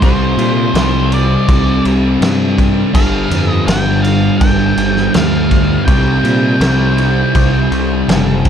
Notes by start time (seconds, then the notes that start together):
0.02 C2 C3 G3 C4 C5, kick, crash
0.37 A#2, crash
0.74 C2, snare, crash
1.12 D5, crash
1.48 C2, kick, crash
1.85 C2, crash
2.21 G2, snare, crash
2.58 kick, crash
2.93 G1 G2 D3 F5, kick, crash
2.97 G3
3.31 F2, crash
3.50 D#5
3.67 G1 G5, snare, crash
4.02 F5, crash
4.38 G1 G5, kick, crash
4.77 G1, crash
4.96 snare
5.14 D2 F5, snare, crash
5.51 kick, crash
5.85 C2 C3 G3 G5, kick, crash
5.91 C4
6.24 A#2, crash
6.60 C2, snare, crash
6.98 crash
7.35 C2, kick, crash
7.71 C2, crash
8.08 F#1, snare, crash
8.45 kick, crash